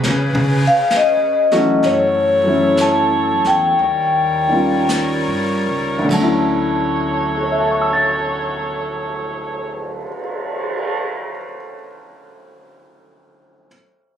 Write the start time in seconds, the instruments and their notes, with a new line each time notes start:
Already playing: saxophone section G#4 B4
0.03 saxophone section C#3 C#4, upright bass C#3, brush sweep, snare
0.35 upright bass C#3
0.67 vibraphone F5
0.91 snare
0.97 vibraphone D#5
1.52 grand piano E3 F#3 A3 C#4 F#4, snare
1.83 upright bass F#2, saxophone section F#3 E4 A4 C#5, vibraphone C#5, brush sweep, snare
2.44 grand piano E3 F#3 A3 C#4
2.48 grand piano E4
2.77 vibraphone A5, snare, hi-hat pedal
3.45 upright bass E2, vibraphone G5, snare
3.79 upright bass D#2, saxophone section G3 D#4 A#4 C#5, brush sweep
4.48 grand piano D#3 G3 A#3
4.52 grand piano C#4 F4
4.89 snare, hi-hat pedal
5.27 upright bass G2
5.68 upright bass C#2
5.99 grand piano D2
6.04 grand piano D3
6.09 upright bass D2, saxophone section F#3 A4 C#5, grand piano F#3, kick, crash
6.13 grand piano C#4, vibraphone A5
6.23 grand piano E4
6.95 cymbal swell
7.36 grand piano A4
7.43 grand piano C#5
7.52 grand piano E5
7.60 grand piano A5
7.71 grand piano C#6
7.82 grand piano E6
7.93 grand piano A6